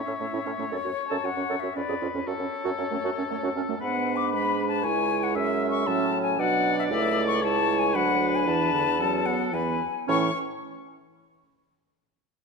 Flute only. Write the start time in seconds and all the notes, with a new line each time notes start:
Already playing: E5
0.72 C#5
1.08 A5
1.25 F#5
1.60 E5
1.76 D5
2.16 C#5
2.28 C#5
3.81 F#5
4.16 D6
4.33 B5
4.68 A5
4.84 G#5
5.23 F#5
5.35 E5
5.70 C#6
5.87 A5
6.22 G#5
6.40 F#5
6.79 E5
6.91 E5
7.27 C#6
7.43 A5
7.79 G#5
7.95 F#5
8.35 G#5
8.47 A5
9.25 F#5
9.53 G#5
10.08 C#6